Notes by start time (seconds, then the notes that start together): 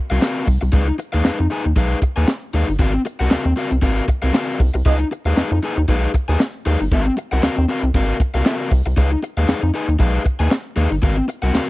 0.10 C2 C4 F#4 A#4 F5
0.21 C4 F#4 A#4 F5, snare, clap, closed hi-hat
0.47 C2, muted overdriven electric guitar stroke, kick, open hi-hat
0.61 C2, muted overdriven electric guitar stroke
0.72 C#2 D#4 G#4 B4 F5, kick, closed hi-hat
0.88 muted overdriven electric guitar stroke
0.99 muted overdriven electric guitar stroke, closed hi-hat
1.13 D#2 D#4 G#4 B4 F5
1.25 F2 D#4 G#4 B4 F5, snare, clap, closed hi-hat
1.39 F2, muted overdriven electric guitar stroke
1.50 D#4 G#4 B4 G#5, closed hi-hat
1.65 D#2, muted overdriven electric guitar stroke
1.76 B1 D#4 G#4 B4 F5, kick, closed hi-hat
1.91 closed hi-hat
2.02 muted overdriven electric guitar stroke, kick, closed hi-hat
2.16 D#2 D#4 G#4 B4 G#5
2.28 muted overdriven electric guitar stroke, snare, clap, closed hi-hat
2.53 D#2 D#4 G#4 B4 F5, open hi-hat
2.68 G1, muted overdriven electric guitar stroke
2.79 G#1 C4 F#4 A#4 F5, kick, closed hi-hat
2.94 muted overdriven electric guitar stroke
3.05 muted overdriven electric guitar stroke, closed hi-hat
3.19 C2 C4 F#4 A#4 F#5
3.30 D#2 C4 F#4 A#4 F5, snare, clap, closed hi-hat
3.45 D#2, muted overdriven electric guitar stroke
3.56 C4 F#4 A#4 F5, closed hi-hat
3.71 C2, muted overdriven electric guitar stroke, closed hi-hat
3.82 G#1 C4 F#4 A#4 F5, kick, closed hi-hat
3.98 closed hi-hat
4.08 muted overdriven electric guitar stroke, kick, closed hi-hat
4.22 C2 C4 F#4 A#4 F5
4.33 C4 F#4 A#4 F5, snare, clap, closed hi-hat
4.60 C2, muted overdriven electric guitar stroke, kick, open hi-hat
4.74 C2, muted overdriven electric guitar stroke
4.85 C#2 B3 D#4 G#4 B4 D#5 F5, kick, closed hi-hat
5.00 muted overdriven electric guitar stroke
5.11 muted overdriven electric guitar stroke, closed hi-hat
5.25 D#2 D#4 G#4 B4 F5
5.36 F2 D#4 G#4 B4 F5, snare, clap, closed hi-hat
5.51 F2, muted overdriven electric guitar stroke
5.63 D#4 G#4 B4 G#5, closed hi-hat
5.77 D#2, muted overdriven electric guitar stroke
5.88 B1 D#4 G#4 B4 F5, kick, closed hi-hat
6.04 closed hi-hat
6.14 muted overdriven electric guitar stroke, kick, closed hi-hat
6.28 D#2 D#4 G#4 B4 G#5
6.40 muted overdriven electric guitar stroke, snare, clap, closed hi-hat
6.65 D#2 D#4 G#4 B4 F5, open hi-hat
6.80 G1, muted overdriven electric guitar stroke
6.91 G#1 C4 F#4 A#4 F5, kick, closed hi-hat
7.06 muted overdriven electric guitar stroke
7.17 muted overdriven electric guitar stroke, closed hi-hat
7.32 C2 C4 F#4 A#4 F#5
7.43 D#2 C4 F#4 A#4 F5, snare, clap, closed hi-hat
7.57 D#2, muted overdriven electric guitar stroke
7.69 C4 F#4 A#4 F5, closed hi-hat
7.83 C2, muted overdriven electric guitar stroke, closed hi-hat
7.94 G#1 C4 F#4 A#4 F5, kick, closed hi-hat
8.09 closed hi-hat
8.20 muted overdriven electric guitar stroke, kick, closed hi-hat
8.34 C2 C4 F#4 A#4 F5
8.45 C4 F#4 A#4 F5, snare, clap, closed hi-hat
8.71 C2, muted overdriven electric guitar stroke, kick, open hi-hat
8.86 C2, muted overdriven electric guitar stroke
8.96 C#2 D#4 G#4 B4 F5, kick, closed hi-hat
9.11 muted overdriven electric guitar stroke
9.23 muted overdriven electric guitar stroke, closed hi-hat
9.37 D#2 D#4 G#4 B4 F5
9.48 F2 D#4 G#4 B4 F5, snare, clap, closed hi-hat
9.62 F2, muted overdriven electric guitar stroke
9.74 D#4 G#4 B4 G#5, closed hi-hat
9.88 D#2, muted overdriven electric guitar stroke, closed hi-hat
9.99 B1 D#4 G#4 B4 F5, kick, closed hi-hat
10.15 closed hi-hat
10.25 muted overdriven electric guitar stroke, kick, closed hi-hat
10.39 D#2 D#4 G#4 B4 G#5
10.51 muted overdriven electric guitar stroke, snare, clap, closed hi-hat
10.76 D#2 D#4 G#4 B4 F5, open hi-hat
10.91 G1, muted overdriven electric guitar stroke
11.02 G#1 C4 F#4 A#4 F5, kick, closed hi-hat
11.17 muted overdriven electric guitar stroke
11.28 muted overdriven electric guitar stroke, closed hi-hat
11.42 C2 C4 F#4 A#4 F#5
11.53 D#2 C4 F#4 A#4 F5, snare, clap, closed hi-hat